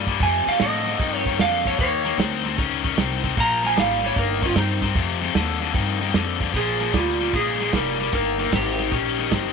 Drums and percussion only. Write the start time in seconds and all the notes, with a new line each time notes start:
0.07 kick, snare, closed hi-hat
0.20 kick, snare, closed hi-hat
0.46 snare, closed hi-hat
0.59 snare, closed hi-hat
0.86 snare, closed hi-hat
0.99 kick, snare, closed hi-hat
1.26 kick, snare, closed hi-hat
1.39 snare, closed hi-hat
1.65 kick, snare, closed hi-hat
1.79 kick, snare, closed hi-hat
2.06 snare, closed hi-hat
2.19 snare, closed hi-hat
2.45 snare, closed hi-hat
2.58 kick, snare, closed hi-hat
2.84 kick, snare, closed hi-hat
2.98 snare, closed hi-hat
3.24 kick, snare, closed hi-hat
3.37 kick, snare, closed hi-hat
3.64 snare, closed hi-hat
3.77 snare, closed hi-hat
4.03 snare, closed hi-hat
4.16 kick, snare, closed hi-hat
4.42 kick, snare, closed hi-hat
4.56 snare, closed hi-hat
4.82 kick, snare, closed hi-hat
4.95 kick, snare, closed hi-hat
5.22 snare, closed hi-hat
5.35 snare, closed hi-hat
5.61 snare, closed hi-hat
5.74 kick, snare, closed hi-hat
6.01 snare, closed hi-hat
6.14 snare, closed hi-hat
6.40 kick, snare, closed hi-hat
6.54 kick, crash
6.80 snare, ride
6.94 kick, snare, ride
7.21 snare, ride
7.33 kick, ride
7.60 snare, ride
7.73 kick, snare, ride
8.00 snare, ride
8.13 kick, ride
8.39 snare, ride
8.52 kick, snare, ride
8.79 snare, ride
8.92 kick, ride
9.18 snare, ride
9.31 kick, snare, ride